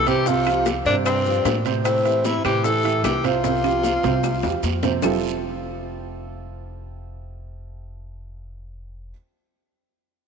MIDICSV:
0, 0, Header, 1, 6, 480
1, 0, Start_track
1, 0, Key_signature, -1, "major"
1, 0, Tempo, 397614
1, 317, Time_signature, 4, 2, 24, 8
1, 12409, End_track
2, 0, Start_track
2, 0, Title_t, "Tenor saxophone"
2, 0, Program_c, 0, 66
2, 99, Note_on_c, 0, 67, 97
2, 329, Note_on_c, 0, 65, 94
2, 347, Note_off_c, 0, 67, 0
2, 803, Note_off_c, 0, 65, 0
2, 1038, Note_on_c, 0, 62, 88
2, 1146, Note_off_c, 0, 62, 0
2, 1274, Note_on_c, 0, 60, 86
2, 1947, Note_off_c, 0, 60, 0
2, 2224, Note_on_c, 0, 60, 82
2, 2719, Note_on_c, 0, 64, 87
2, 2737, Note_off_c, 0, 60, 0
2, 2952, Note_off_c, 0, 64, 0
2, 2959, Note_on_c, 0, 67, 86
2, 3193, Note_on_c, 0, 69, 90
2, 3211, Note_off_c, 0, 67, 0
2, 3667, Note_off_c, 0, 69, 0
2, 3674, Note_on_c, 0, 67, 78
2, 3932, Note_on_c, 0, 65, 92
2, 3950, Note_off_c, 0, 67, 0
2, 5604, Note_off_c, 0, 65, 0
2, 12409, End_track
3, 0, Start_track
3, 0, Title_t, "Grand piano"
3, 0, Program_c, 1, 0
3, 80, Note_on_c, 1, 48, 75
3, 86, Note_on_c, 1, 60, 75
3, 87, Note_on_c, 1, 72, 77
3, 276, Note_off_c, 1, 48, 0
3, 279, Note_off_c, 1, 60, 0
3, 280, Note_off_c, 1, 72, 0
3, 332, Note_on_c, 1, 48, 78
3, 342, Note_on_c, 1, 60, 75
3, 343, Note_on_c, 1, 72, 74
3, 523, Note_off_c, 1, 48, 0
3, 529, Note_off_c, 1, 60, 0
3, 529, Note_off_c, 1, 72, 0
3, 566, Note_on_c, 1, 53, 70
3, 571, Note_on_c, 1, 65, 67
3, 574, Note_on_c, 1, 67, 68
3, 956, Note_off_c, 1, 53, 0
3, 959, Note_off_c, 1, 65, 0
3, 960, Note_off_c, 1, 67, 0
3, 1058, Note_on_c, 1, 48, 77
3, 1062, Note_on_c, 1, 60, 83
3, 1064, Note_on_c, 1, 72, 74
3, 1443, Note_off_c, 1, 48, 0
3, 1445, Note_off_c, 1, 60, 0
3, 1446, Note_off_c, 1, 72, 0
3, 1517, Note_on_c, 1, 53, 67
3, 1522, Note_on_c, 1, 65, 71
3, 1526, Note_on_c, 1, 67, 68
3, 1911, Note_off_c, 1, 53, 0
3, 1913, Note_off_c, 1, 65, 0
3, 1916, Note_off_c, 1, 67, 0
3, 1995, Note_on_c, 1, 48, 79
3, 2001, Note_on_c, 1, 72, 79
3, 2005, Note_on_c, 1, 60, 77
3, 2389, Note_off_c, 1, 48, 0
3, 2393, Note_off_c, 1, 72, 0
3, 2395, Note_off_c, 1, 60, 0
3, 2468, Note_on_c, 1, 52, 69
3, 2472, Note_on_c, 1, 64, 70
3, 2478, Note_on_c, 1, 67, 65
3, 2865, Note_off_c, 1, 52, 0
3, 2867, Note_off_c, 1, 64, 0
3, 2871, Note_off_c, 1, 67, 0
3, 2953, Note_on_c, 1, 60, 80
3, 2954, Note_on_c, 1, 48, 75
3, 2961, Note_on_c, 1, 72, 76
3, 3152, Note_off_c, 1, 48, 0
3, 3152, Note_off_c, 1, 60, 0
3, 3156, Note_off_c, 1, 72, 0
3, 3190, Note_on_c, 1, 52, 68
3, 3196, Note_on_c, 1, 64, 67
3, 3197, Note_on_c, 1, 67, 68
3, 3389, Note_off_c, 1, 52, 0
3, 3393, Note_off_c, 1, 64, 0
3, 3394, Note_off_c, 1, 67, 0
3, 3430, Note_on_c, 1, 52, 71
3, 3432, Note_on_c, 1, 64, 72
3, 3439, Note_on_c, 1, 67, 64
3, 3826, Note_off_c, 1, 52, 0
3, 3827, Note_off_c, 1, 64, 0
3, 3832, Note_off_c, 1, 67, 0
3, 3910, Note_on_c, 1, 48, 72
3, 3911, Note_on_c, 1, 60, 79
3, 3920, Note_on_c, 1, 72, 76
3, 4110, Note_off_c, 1, 48, 0
3, 4110, Note_off_c, 1, 60, 0
3, 4115, Note_off_c, 1, 72, 0
3, 4151, Note_on_c, 1, 48, 77
3, 4153, Note_on_c, 1, 60, 73
3, 4157, Note_on_c, 1, 72, 68
3, 4350, Note_off_c, 1, 48, 0
3, 4351, Note_off_c, 1, 60, 0
3, 4354, Note_off_c, 1, 72, 0
3, 4386, Note_on_c, 1, 53, 69
3, 4393, Note_on_c, 1, 65, 69
3, 4394, Note_on_c, 1, 67, 66
3, 4784, Note_off_c, 1, 53, 0
3, 4788, Note_off_c, 1, 65, 0
3, 4788, Note_off_c, 1, 67, 0
3, 4875, Note_on_c, 1, 60, 78
3, 4878, Note_on_c, 1, 48, 80
3, 4882, Note_on_c, 1, 72, 74
3, 5269, Note_off_c, 1, 60, 0
3, 5271, Note_off_c, 1, 48, 0
3, 5273, Note_off_c, 1, 72, 0
3, 5352, Note_on_c, 1, 53, 64
3, 5353, Note_on_c, 1, 65, 62
3, 5357, Note_on_c, 1, 67, 66
3, 5747, Note_off_c, 1, 53, 0
3, 5748, Note_off_c, 1, 65, 0
3, 5750, Note_off_c, 1, 67, 0
3, 5831, Note_on_c, 1, 48, 78
3, 5837, Note_on_c, 1, 60, 69
3, 5840, Note_on_c, 1, 72, 71
3, 6030, Note_off_c, 1, 48, 0
3, 6033, Note_off_c, 1, 60, 0
3, 6035, Note_off_c, 1, 72, 0
3, 6075, Note_on_c, 1, 53, 78
3, 6078, Note_on_c, 1, 60, 72
3, 6078, Note_on_c, 1, 64, 74
3, 6081, Note_on_c, 1, 65, 79
3, 6083, Note_on_c, 1, 67, 75
3, 6087, Note_on_c, 1, 69, 94
3, 10991, Note_off_c, 1, 53, 0
3, 10994, Note_off_c, 1, 60, 0
3, 10994, Note_off_c, 1, 64, 0
3, 10997, Note_off_c, 1, 65, 0
3, 11000, Note_off_c, 1, 67, 0
3, 11003, Note_off_c, 1, 69, 0
3, 12409, End_track
4, 0, Start_track
4, 0, Title_t, "Baritone saxophone"
4, 0, Program_c, 2, 67
4, 88, Note_on_c, 2, 52, 79
4, 329, Note_on_c, 2, 48, 79
4, 347, Note_off_c, 2, 52, 0
4, 803, Note_off_c, 2, 48, 0
4, 1043, Note_on_c, 2, 46, 67
4, 1150, Note_off_c, 2, 46, 0
4, 1287, Note_on_c, 2, 43, 76
4, 1953, Note_off_c, 2, 43, 0
4, 2237, Note_on_c, 2, 45, 67
4, 2728, Note_on_c, 2, 48, 73
4, 2746, Note_off_c, 2, 45, 0
4, 2949, Note_off_c, 2, 48, 0
4, 2956, Note_on_c, 2, 52, 78
4, 3198, Note_off_c, 2, 52, 0
4, 3198, Note_on_c, 2, 52, 79
4, 3677, Note_off_c, 2, 52, 0
4, 3683, Note_on_c, 2, 52, 72
4, 3932, Note_on_c, 2, 48, 72
4, 3950, Note_off_c, 2, 52, 0
4, 5604, Note_off_c, 2, 48, 0
4, 12409, End_track
5, 0, Start_track
5, 0, Title_t, "Upright bass"
5, 0, Program_c, 3, 32
5, 0, Note_on_c, 3, 36, 93
5, 960, Note_off_c, 3, 36, 0
5, 1028, Note_on_c, 3, 43, 95
5, 1704, Note_off_c, 3, 43, 0
5, 1750, Note_on_c, 3, 45, 95
5, 2881, Note_off_c, 3, 45, 0
5, 2949, Note_on_c, 3, 45, 97
5, 3625, Note_off_c, 3, 45, 0
5, 3663, Note_on_c, 3, 36, 84
5, 4797, Note_off_c, 3, 36, 0
5, 4873, Note_on_c, 3, 36, 98
5, 5321, Note_off_c, 3, 36, 0
5, 5355, Note_on_c, 3, 40, 63
5, 5578, Note_off_c, 3, 40, 0
5, 5588, Note_on_c, 3, 41, 80
5, 6016, Note_off_c, 3, 41, 0
5, 6070, Note_on_c, 3, 29, 72
5, 10986, Note_off_c, 3, 29, 0
5, 12409, End_track
6, 0, Start_track
6, 0, Title_t, "Drums"
6, 78, Note_on_c, 9, 73, 67
6, 79, Note_on_c, 9, 70, 30
6, 80, Note_on_c, 9, 65, 62
6, 88, Note_on_c, 9, 63, 29
6, 199, Note_off_c, 9, 73, 0
6, 200, Note_off_c, 9, 70, 0
6, 201, Note_off_c, 9, 65, 0
6, 209, Note_off_c, 9, 63, 0
6, 314, Note_on_c, 9, 74, 60
6, 316, Note_on_c, 9, 60, 60
6, 318, Note_on_c, 9, 70, 69
6, 325, Note_on_c, 9, 63, 35
6, 435, Note_off_c, 9, 74, 0
6, 436, Note_off_c, 9, 60, 0
6, 439, Note_off_c, 9, 70, 0
6, 446, Note_off_c, 9, 63, 0
6, 558, Note_on_c, 9, 70, 29
6, 560, Note_on_c, 9, 60, 33
6, 562, Note_on_c, 9, 75, 63
6, 564, Note_on_c, 9, 65, 89
6, 567, Note_on_c, 9, 63, 31
6, 679, Note_off_c, 9, 70, 0
6, 681, Note_off_c, 9, 60, 0
6, 683, Note_off_c, 9, 75, 0
6, 685, Note_off_c, 9, 65, 0
6, 688, Note_off_c, 9, 63, 0
6, 794, Note_on_c, 9, 70, 72
6, 795, Note_on_c, 9, 73, 62
6, 797, Note_on_c, 9, 60, 62
6, 799, Note_on_c, 9, 63, 85
6, 802, Note_on_c, 9, 65, 67
6, 802, Note_on_c, 9, 66, 57
6, 915, Note_off_c, 9, 70, 0
6, 916, Note_off_c, 9, 73, 0
6, 917, Note_off_c, 9, 60, 0
6, 920, Note_off_c, 9, 63, 0
6, 923, Note_off_c, 9, 65, 0
6, 923, Note_off_c, 9, 66, 0
6, 1033, Note_on_c, 9, 70, 28
6, 1036, Note_on_c, 9, 73, 66
6, 1037, Note_on_c, 9, 60, 35
6, 1043, Note_on_c, 9, 63, 31
6, 1154, Note_off_c, 9, 70, 0
6, 1156, Note_off_c, 9, 73, 0
6, 1158, Note_off_c, 9, 60, 0
6, 1163, Note_off_c, 9, 63, 0
6, 1274, Note_on_c, 9, 74, 64
6, 1276, Note_on_c, 9, 70, 67
6, 1277, Note_on_c, 9, 75, 61
6, 1281, Note_on_c, 9, 60, 66
6, 1283, Note_on_c, 9, 65, 89
6, 1288, Note_on_c, 9, 63, 33
6, 1395, Note_off_c, 9, 74, 0
6, 1397, Note_off_c, 9, 70, 0
6, 1398, Note_off_c, 9, 75, 0
6, 1402, Note_off_c, 9, 60, 0
6, 1404, Note_off_c, 9, 65, 0
6, 1409, Note_off_c, 9, 63, 0
6, 1515, Note_on_c, 9, 70, 27
6, 1523, Note_on_c, 9, 63, 31
6, 1635, Note_off_c, 9, 70, 0
6, 1644, Note_off_c, 9, 63, 0
6, 1752, Note_on_c, 9, 73, 65
6, 1756, Note_on_c, 9, 60, 67
6, 1756, Note_on_c, 9, 61, 81
6, 1756, Note_on_c, 9, 65, 64
6, 1756, Note_on_c, 9, 66, 76
6, 1757, Note_on_c, 9, 70, 63
6, 1764, Note_on_c, 9, 63, 73
6, 1873, Note_off_c, 9, 73, 0
6, 1876, Note_off_c, 9, 60, 0
6, 1876, Note_off_c, 9, 61, 0
6, 1876, Note_off_c, 9, 65, 0
6, 1876, Note_off_c, 9, 66, 0
6, 1878, Note_off_c, 9, 70, 0
6, 1885, Note_off_c, 9, 63, 0
6, 1990, Note_on_c, 9, 73, 68
6, 1996, Note_on_c, 9, 70, 29
6, 1999, Note_on_c, 9, 60, 34
6, 2000, Note_on_c, 9, 65, 64
6, 2111, Note_off_c, 9, 73, 0
6, 2117, Note_off_c, 9, 70, 0
6, 2119, Note_off_c, 9, 60, 0
6, 2121, Note_off_c, 9, 65, 0
6, 2228, Note_on_c, 9, 74, 61
6, 2235, Note_on_c, 9, 75, 62
6, 2236, Note_on_c, 9, 60, 61
6, 2236, Note_on_c, 9, 70, 63
6, 2238, Note_on_c, 9, 65, 87
6, 2242, Note_on_c, 9, 63, 35
6, 2349, Note_off_c, 9, 74, 0
6, 2356, Note_off_c, 9, 75, 0
6, 2357, Note_off_c, 9, 60, 0
6, 2357, Note_off_c, 9, 70, 0
6, 2359, Note_off_c, 9, 65, 0
6, 2363, Note_off_c, 9, 63, 0
6, 2479, Note_on_c, 9, 65, 63
6, 2479, Note_on_c, 9, 70, 25
6, 2484, Note_on_c, 9, 63, 31
6, 2599, Note_off_c, 9, 70, 0
6, 2600, Note_off_c, 9, 65, 0
6, 2605, Note_off_c, 9, 63, 0
6, 2710, Note_on_c, 9, 66, 60
6, 2710, Note_on_c, 9, 73, 65
6, 2714, Note_on_c, 9, 70, 72
6, 2717, Note_on_c, 9, 60, 62
6, 2719, Note_on_c, 9, 63, 83
6, 2831, Note_off_c, 9, 66, 0
6, 2831, Note_off_c, 9, 73, 0
6, 2835, Note_off_c, 9, 70, 0
6, 2837, Note_off_c, 9, 60, 0
6, 2840, Note_off_c, 9, 63, 0
6, 2953, Note_on_c, 9, 73, 62
6, 2954, Note_on_c, 9, 63, 36
6, 2954, Note_on_c, 9, 75, 65
6, 2955, Note_on_c, 9, 65, 78
6, 2956, Note_on_c, 9, 70, 29
6, 3074, Note_off_c, 9, 73, 0
6, 3074, Note_off_c, 9, 75, 0
6, 3075, Note_off_c, 9, 63, 0
6, 3075, Note_off_c, 9, 65, 0
6, 3077, Note_off_c, 9, 70, 0
6, 3191, Note_on_c, 9, 60, 63
6, 3192, Note_on_c, 9, 74, 63
6, 3195, Note_on_c, 9, 63, 29
6, 3198, Note_on_c, 9, 70, 69
6, 3312, Note_off_c, 9, 60, 0
6, 3313, Note_off_c, 9, 74, 0
6, 3316, Note_off_c, 9, 63, 0
6, 3319, Note_off_c, 9, 70, 0
6, 3431, Note_on_c, 9, 63, 33
6, 3438, Note_on_c, 9, 70, 26
6, 3443, Note_on_c, 9, 65, 68
6, 3552, Note_off_c, 9, 63, 0
6, 3559, Note_off_c, 9, 70, 0
6, 3564, Note_off_c, 9, 65, 0
6, 3670, Note_on_c, 9, 73, 66
6, 3673, Note_on_c, 9, 60, 61
6, 3673, Note_on_c, 9, 61, 82
6, 3675, Note_on_c, 9, 70, 64
6, 3675, Note_on_c, 9, 75, 65
6, 3676, Note_on_c, 9, 63, 71
6, 3679, Note_on_c, 9, 65, 79
6, 3679, Note_on_c, 9, 66, 73
6, 3791, Note_off_c, 9, 73, 0
6, 3794, Note_off_c, 9, 60, 0
6, 3794, Note_off_c, 9, 61, 0
6, 3796, Note_off_c, 9, 70, 0
6, 3796, Note_off_c, 9, 75, 0
6, 3797, Note_off_c, 9, 63, 0
6, 3800, Note_off_c, 9, 65, 0
6, 3800, Note_off_c, 9, 66, 0
6, 3913, Note_on_c, 9, 73, 69
6, 3918, Note_on_c, 9, 65, 65
6, 3919, Note_on_c, 9, 63, 31
6, 3923, Note_on_c, 9, 70, 28
6, 4034, Note_off_c, 9, 73, 0
6, 4038, Note_off_c, 9, 65, 0
6, 4040, Note_off_c, 9, 63, 0
6, 4043, Note_off_c, 9, 70, 0
6, 4148, Note_on_c, 9, 74, 63
6, 4153, Note_on_c, 9, 60, 60
6, 4157, Note_on_c, 9, 65, 81
6, 4158, Note_on_c, 9, 70, 66
6, 4163, Note_on_c, 9, 63, 33
6, 4268, Note_off_c, 9, 74, 0
6, 4274, Note_off_c, 9, 60, 0
6, 4278, Note_off_c, 9, 65, 0
6, 4278, Note_off_c, 9, 70, 0
6, 4284, Note_off_c, 9, 63, 0
6, 4393, Note_on_c, 9, 60, 33
6, 4396, Note_on_c, 9, 75, 59
6, 4397, Note_on_c, 9, 65, 78
6, 4405, Note_on_c, 9, 63, 34
6, 4405, Note_on_c, 9, 70, 24
6, 4514, Note_off_c, 9, 60, 0
6, 4517, Note_off_c, 9, 65, 0
6, 4517, Note_off_c, 9, 75, 0
6, 4526, Note_off_c, 9, 63, 0
6, 4526, Note_off_c, 9, 70, 0
6, 4629, Note_on_c, 9, 73, 65
6, 4631, Note_on_c, 9, 60, 54
6, 4639, Note_on_c, 9, 63, 89
6, 4641, Note_on_c, 9, 70, 67
6, 4750, Note_off_c, 9, 73, 0
6, 4751, Note_off_c, 9, 60, 0
6, 4760, Note_off_c, 9, 63, 0
6, 4762, Note_off_c, 9, 70, 0
6, 4869, Note_on_c, 9, 73, 63
6, 4870, Note_on_c, 9, 60, 33
6, 4877, Note_on_c, 9, 66, 100
6, 4882, Note_on_c, 9, 70, 29
6, 4885, Note_on_c, 9, 63, 34
6, 4990, Note_off_c, 9, 73, 0
6, 4991, Note_off_c, 9, 60, 0
6, 4998, Note_off_c, 9, 66, 0
6, 5003, Note_off_c, 9, 70, 0
6, 5006, Note_off_c, 9, 63, 0
6, 5110, Note_on_c, 9, 60, 67
6, 5112, Note_on_c, 9, 74, 63
6, 5114, Note_on_c, 9, 70, 65
6, 5117, Note_on_c, 9, 66, 74
6, 5118, Note_on_c, 9, 75, 59
6, 5128, Note_on_c, 9, 63, 31
6, 5231, Note_off_c, 9, 60, 0
6, 5233, Note_off_c, 9, 74, 0
6, 5235, Note_off_c, 9, 70, 0
6, 5238, Note_off_c, 9, 66, 0
6, 5239, Note_off_c, 9, 75, 0
6, 5249, Note_off_c, 9, 63, 0
6, 5349, Note_on_c, 9, 60, 78
6, 5353, Note_on_c, 9, 66, 83
6, 5358, Note_on_c, 9, 70, 28
6, 5360, Note_on_c, 9, 63, 32
6, 5470, Note_off_c, 9, 60, 0
6, 5473, Note_off_c, 9, 66, 0
6, 5479, Note_off_c, 9, 70, 0
6, 5481, Note_off_c, 9, 63, 0
6, 5590, Note_on_c, 9, 70, 57
6, 5590, Note_on_c, 9, 73, 67
6, 5597, Note_on_c, 9, 66, 75
6, 5600, Note_on_c, 9, 63, 66
6, 5711, Note_off_c, 9, 70, 0
6, 5711, Note_off_c, 9, 73, 0
6, 5718, Note_off_c, 9, 66, 0
6, 5720, Note_off_c, 9, 63, 0
6, 5827, Note_on_c, 9, 73, 66
6, 5830, Note_on_c, 9, 61, 76
6, 5833, Note_on_c, 9, 66, 77
6, 5834, Note_on_c, 9, 70, 27
6, 5842, Note_on_c, 9, 63, 64
6, 5948, Note_off_c, 9, 73, 0
6, 5951, Note_off_c, 9, 61, 0
6, 5954, Note_off_c, 9, 66, 0
6, 5955, Note_off_c, 9, 70, 0
6, 5962, Note_off_c, 9, 63, 0
6, 6064, Note_on_c, 9, 74, 81
6, 6065, Note_on_c, 9, 61, 93
6, 6067, Note_on_c, 9, 70, 91
6, 6069, Note_on_c, 9, 66, 87
6, 6079, Note_on_c, 9, 75, 90
6, 6080, Note_on_c, 9, 64, 102
6, 6185, Note_off_c, 9, 74, 0
6, 6186, Note_off_c, 9, 61, 0
6, 6188, Note_off_c, 9, 70, 0
6, 6190, Note_off_c, 9, 66, 0
6, 6199, Note_off_c, 9, 75, 0
6, 6200, Note_off_c, 9, 64, 0
6, 12409, End_track
0, 0, End_of_file